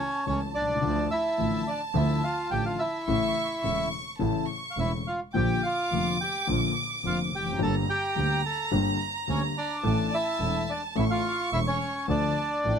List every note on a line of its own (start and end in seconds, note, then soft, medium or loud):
0.00 0.24 C#4 medium
0.00 0.25 C#5 medium
0.00 0.79 A5 medium
0.27 0.51 C#2 soft
0.27 0.51 C#2 medium
0.27 0.50 C#3 soft
0.27 0.51 E3 soft
0.27 0.51 A3 soft
0.27 0.41 C#4 medium
0.27 0.51 E4 soft
0.27 0.40 C#5 medium
0.54 0.82 C2 soft
0.54 1.08 D4 medium
0.54 1.07 D5 medium
0.61 0.69 B1 soft
0.68 0.76 C2 soft
0.75 0.83 C#2 medium
0.82 1.06 D2 medium
0.82 1.06 D3 medium
0.82 1.06 F3 medium
0.82 1.06 A3 medium
0.82 1.06 F4 medium
0.82 3.04 A5 medium
1.11 1.64 E4 medium
1.11 1.69 E5 medium
1.38 1.62 A1 medium
1.38 1.63 A1 soft
1.38 1.62 A2 medium
1.38 1.62 D3 soft
1.38 1.62 F3 soft
1.38 1.62 A3 soft
1.38 1.63 F4 soft
1.67 1.81 D4 medium
1.67 1.80 D5 medium
1.94 2.18 D2 medium
1.94 2.18 D3 medium
1.94 2.18 F3 medium
1.94 2.18 A3 medium
1.94 2.22 E4 medium
1.94 2.19 F4 medium
1.94 2.24 E5 medium
2.23 2.50 F4 medium
2.23 2.52 F5 medium
2.51 2.75 A1 medium
2.51 2.75 A1 soft
2.51 2.75 A2 soft
2.51 2.75 D3 soft
2.51 2.75 F3 soft
2.51 2.75 A3 soft
2.51 2.75 F4 soft
2.51 2.65 G4 medium
2.51 2.64 G5 medium
2.66 2.80 F4 medium
2.66 2.80 F5 medium
2.79 3.89 E4 medium
2.79 3.88 E5 medium
3.07 3.31 A1 medium
3.07 3.32 A1 medium
3.07 3.31 A2 medium
3.07 3.31 C#3 medium
3.07 3.32 E3 medium
3.07 3.32 A3 medium
3.07 3.32 E4 medium
3.07 3.60 C#6 medium
3.64 3.88 E1 soft
3.64 3.88 E2 soft
3.64 3.88 C#3 soft
3.64 3.88 E3 soft
3.64 3.88 A3 soft
3.64 3.88 E4 soft
3.64 4.17 C#6 medium
4.19 4.44 A1 medium
4.19 4.44 A2 medium
4.19 4.44 C#3 medium
4.19 4.44 E3 medium
4.19 4.44 A3 medium
4.19 4.44 E4 medium
4.19 4.49 A5 medium
4.48 5.06 C#6 medium
4.70 4.78 F5 medium
4.77 5.01 E1 medium
4.77 5.02 E1 soft
4.77 5.02 E2 soft
4.77 5.01 C#3 soft
4.77 5.01 E3 soft
4.77 5.02 A3 soft
4.77 5.02 E4 soft
4.77 4.92 E4 soft
4.77 4.91 E5 medium
5.07 5.21 F4 soft
5.07 5.20 F5 medium
5.33 5.58 A#1 medium
5.33 5.59 A#1 medium
5.33 5.58 A#2 medium
5.33 5.58 D3 medium
5.33 5.58 F3 medium
5.33 5.58 A#3 medium
5.33 5.58 F4 medium
5.33 5.62 G4 medium
5.33 5.63 G5 medium
5.33 7.56 D6 medium
5.63 6.17 F4 medium
5.63 6.16 F5 medium
5.91 6.15 F1 soft
5.91 6.15 F2 soft
5.91 6.15 D3 soft
5.91 6.15 F3 soft
5.91 6.15 A#3 soft
5.91 6.15 F4 soft
6.21 6.47 G4 soft
6.21 6.47 G5 medium
6.47 6.72 A#1 medium
6.47 6.71 A#2 medium
6.47 6.71 D3 medium
6.47 6.71 F3 medium
6.47 6.71 A#3 medium
6.47 6.72 F4 medium
7.04 7.28 F1 soft
7.04 7.28 F1 medium
7.04 7.28 F2 soft
7.04 7.28 D3 soft
7.04 7.28 F3 soft
7.04 7.28 A#3 soft
7.04 7.28 F4 soft
7.04 7.18 F4 medium
7.04 7.19 F5 medium
7.32 7.59 F1 soft
7.32 7.60 G4 medium
7.32 7.60 G5 medium
7.39 7.46 E2 soft
7.46 7.53 F2 soft
7.52 7.60 F#2 medium
7.58 7.83 G1 medium
7.58 7.84 G1 medium
7.58 7.83 G2 medium
7.58 7.83 D3 medium
7.58 7.83 G3 medium
7.58 7.83 A#3 medium
7.58 7.83 G4 medium
7.58 9.81 A#5 medium
7.63 7.75 A4 medium
7.63 7.75 A5 medium
7.90 8.41 G4 medium
7.90 8.41 G5 medium
8.16 8.40 D2 soft
8.16 8.40 D3 soft
8.16 8.40 G3 soft
8.16 8.40 A#3 soft
8.16 8.40 G4 soft
8.46 8.71 A4 medium
8.46 8.71 A5 medium
8.71 8.96 G1 medium
8.71 8.96 G2 medium
8.71 8.95 D3 medium
8.71 8.95 G3 medium
8.71 8.96 A#3 medium
8.71 8.96 G4 medium
9.28 9.52 D2 soft
9.28 9.52 D2 medium
9.28 9.52 D3 soft
9.28 9.52 G3 soft
9.28 9.52 A#3 soft
9.28 9.42 C#4 medium
9.28 9.52 G4 soft
9.28 9.42 C#5 medium
9.58 10.09 D4 medium
9.58 10.15 D5 medium
9.83 10.07 A1 medium
9.83 10.08 A1 medium
9.83 10.07 A2 medium
9.83 10.07 E3 medium
9.83 10.07 A3 medium
9.83 10.07 D4 medium
9.83 10.08 A4 medium
9.83 10.96 A5 medium
10.14 10.65 E4 medium
10.14 10.71 E5 medium
10.39 10.63 E1 soft
10.39 10.64 E1 soft
10.39 10.63 E2 medium
10.39 10.63 E3 soft
10.39 10.63 A3 soft
10.39 10.63 D4 soft
10.39 10.63 A4 soft
10.70 10.82 D4 medium
10.70 10.82 D5 medium
10.95 11.19 A1 medium
10.95 11.20 A1 medium
10.95 11.19 A2 medium
10.95 11.19 E3 medium
10.95 11.19 A3 medium
10.95 11.19 C#4 medium
10.95 11.05 E4 medium
10.95 11.20 A4 medium
10.95 11.04 E5 medium
10.95 12.09 C#6 medium
11.11 11.50 F4 medium
11.11 11.50 F5 medium
11.52 11.76 E1 soft
11.52 11.76 E1 medium
11.52 11.76 E2 soft
11.52 11.76 E3 soft
11.52 11.76 A3 soft
11.52 11.76 C#4 soft
11.52 11.60 E4 medium
11.52 11.76 A4 soft
11.52 11.59 E5 medium
11.67 12.07 C#4 medium
11.67 12.06 C#5 medium
12.08 12.32 D2 medium
12.08 12.32 D3 medium
12.08 12.32 F3 medium
12.08 12.32 A3 medium
12.08 12.32 D4 medium
12.08 12.79 D4 medium
12.08 12.32 A4 medium
12.08 12.79 D5 medium
12.08 12.62 A5 medium
12.64 12.79 A1 soft
12.64 12.79 A2 soft
12.64 12.79 F3 soft
12.64 12.79 A3 soft
12.64 12.79 D4 soft
12.64 12.79 A4 soft
12.64 12.79 G5 medium